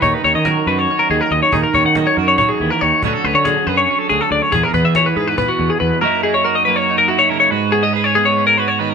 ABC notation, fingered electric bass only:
X:1
M:7/8
L:1/16
Q:1/4=140
K:D#phr
V:1 name="Fingered electric bass" clef=bass
D,, z D,, D,2 z F,,2 z2 D,, z D,, z | D,, z D,, D,2 z F,,2 z2 D,, z D,, z | =D,, z D,, =D,2 z F,,2 z2 D,, z D,, z | E,, z E,, E,2 z G,,2 z2 E,, z E,, z |
z12 z2 | z12 z2 |]